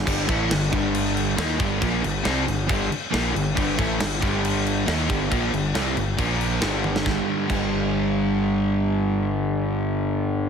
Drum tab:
CC |x-x-x-x-x-x-x-x-|x-x-x-x-x-x-x-x-|x-x-x-x-x-x-x-x-|x-x-x-x-x-x-x---|
SD |----o-------o---|----o-------o---|----o-------o---|----o-------o--o|
T1 |----------------|----------------|----------------|--------------o-|
BD |o-o---o-------o-|o-------o-------|o-o---o-------o-|o-------o-------|

CC |----x-----------|----------------|
SD |o---------------|----------------|
T1 |----------------|----------------|
BD |o---o-----------|----------------|